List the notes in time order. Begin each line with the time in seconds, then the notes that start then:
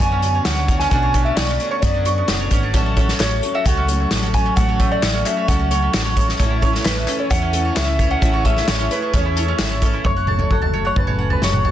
Already playing: B1 B2 D3 B3 D4 G#4
0.00 F#2 F#3 B3 C#4 D4 F#4 C#5 G#5, kick, closed hi-hat
0.12 C#4
0.22 B3 C#4 D4 F#4 C#5, closed hi-hat, tambourine
0.35 C#5
0.45 D2 B2 F#3 B3 C#4 D4 F#4 C#5 F#5, snare, clap, closed hi-hat, tambourine
0.57 D4
0.68 B3 C#4 D4 F#4 C#5, kick, closed hi-hat, tambourine
0.80 C#4 G#5, snare
0.90 B1 B2 F#3 A3 B3 C#4 D4 F#4 C#5 G#5, kick, closed hi-hat, tambourine
1.03 C#5
1.13 B3 C#4 D4 F#4 C#5, kick, closed hi-hat, tambourine
1.25 D4 E5
1.36 B1 B2 F#3 B3 C#4 D4 F#4 D5 C#6, snare, clap, closed hi-hat, tambourine
1.49 C#4
1.59 B3 C#4 D4 F#4 C#5, closed hi-hat, tambourine
1.71 C#5 C#6
1.82 F#2 F#3 B3 C#4 D4 F#4 C#5 D5, kick, closed hi-hat, tambourine
1.94 D4
2.04 B3 C#4 D4 F#4 C#5 C#6, closed hi-hat, tambourine
2.18 B3
2.28 F#1 B2 F#3 B3 C#4 D4 F#4 C#5, snare, clap, closed hi-hat, tambourine
2.40 C#5
2.51 G#1 B3 C#4 D4 F#4 C#5, kick, closed hi-hat, tambourine
2.63 D4
2.73 A1 A2 F#3 A3 C#4 F#4 A4 C#5, kick, closed hi-hat, tambourine
2.86 F#4
2.96 A3 C#4 F#4 A4 C#5, kick, closed hi-hat, tambourine
3.08 C#4, snare
3.19 A1 A3 C#4 F#4 A4 C#5, snare, clap, closed hi-hat, tambourine
3.42 A3 C#4 F#4 A4 C#5, closed hi-hat
3.55 F#4 E5
3.65 C#2 A3 C#4 F#4 A4 C#5 F#5, kick, closed hi-hat, tambourine
3.77 C#4
3.87 A3 C#4 F#4 A4 C#5, closed hi-hat, tambourine
4.00 C#5
4.10 A1 A3 C#4 F#4 A4 C#5, snare, clap, closed hi-hat, tambourine
4.23 F#4
4.34 A3 C#4 F#4 A4 C#5 G#5, kick, closed hi-hat, tambourine
4.46 C#4
4.56 A1 A2 A3 C#4 F#4 A4 C#5 F#5, kick, closed hi-hat, tambourine
4.69 C#5
4.79 A3 C#4 F#4 A4 C#5, kick, closed hi-hat, tambourine
4.91 F#4 D5
5.02 A1 A3 C#4 F#4 A4 C#5, snare, clap, closed hi-hat, tambourine
5.14 C#4
5.24 A3 C#4 F#4 A4 C#5 E5, clap, closed hi-hat, tambourine
5.29 C#4
5.37 C#5
5.48 C#2 A3 C#4 F#4 A4 C#5 F#5, kick, closed hi-hat, tambourine
5.59 F#4
5.70 A3 C#4 F#4 A4 C#5, closed hi-hat, tambourine
5.75 C#4
5.82 C#4
5.93 A1 A3 C#4 F#4 A4 C#5, snare, clap, closed hi-hat, tambourine
6.05 C#5
6.16 A3 C#4 F#4 A4 C#5, kick, closed hi-hat, tambourine
6.28 F#4, snare
6.39 A1 A2 E3 A3 C#4 E4 A4 C#5, kick, closed hi-hat, tambourine
6.50 E4
6.61 A3 C#4 E4 A4 C#5, kick, closed hi-hat, tambourine
6.73 C#4, snare
6.84 A1 A2 E3 A3 C#4 E4 A4 B4, snare, clap, closed hi-hat, tambourine
7.07 A3 C#4 E4 A4 C#5, clap, closed hi-hat, tambourine
7.19 E4 C#5
7.30 E2 A3 C#4 E4 A4 C#5 F#5, kick, closed hi-hat, tambourine
7.42 C#4
7.53 A3 C#4 E4 A4 C#5, closed hi-hat, tambourine
7.65 C#5
7.75 C#2 A2 E3 A3 C#4 E4 A4 C#5 E5, snare, clap, closed hi-hat, tambourine
7.88 E4
7.99 A3 C#4 E4 A4 B4 C#5, kick, closed hi-hat, tambourine
8.11 C#4 F#5
8.21 A1 A2 E3 A3 C#4 E4 G#4 A4 C#5, kick, closed hi-hat, tambourine
8.33 C#5
8.44 A3 C#4 E4 A4 C#5 E5, kick, closed hi-hat, tambourine
8.56 E4, snare
8.67 A1 A2 E3 A3 C#4 E4 A4 C#5, snare, clap, closed hi-hat, tambourine
8.79 C#4
8.90 A3 C#4 E4 A4 B4 C#5, closed hi-hat, tambourine
9.02 C#5
9.13 E2 A3 C#4 E4 A4 C#5, kick, closed hi-hat, tambourine
9.25 E4
9.36 A3 C#4 E4 A4 C#5, closed hi-hat, tambourine
9.48 C#4
9.59 G#1 A2 E3 A3 C#4 E4 A4 C#5, snare, clap, closed hi-hat, tambourine
9.71 C#5
9.81 A3 C#4 E4 A4 C#5, kick, closed hi-hat, tambourine
9.93 E4
10.04 F#1 F#2 A3 C#5, kick, floor tom
10.16 F#5
10.27 A4 A5, floor tom, mid tom
10.39 C#5, floor tom
10.50 F#1 F#3 A4 F#5, kick
10.62 A5, floor tom
10.73 A3 C#5
10.85 C#5 F#5
10.96 F#1 C#3 B4 A5, kick, floor tom
11.07 C#5, mid tom
11.19 C#4 F#5
11.30 B4 A5, floor tom
11.41 F#1 F#3 C#5, snare
11.53 F#5, mid tom
11.65 A4 A5, floor tom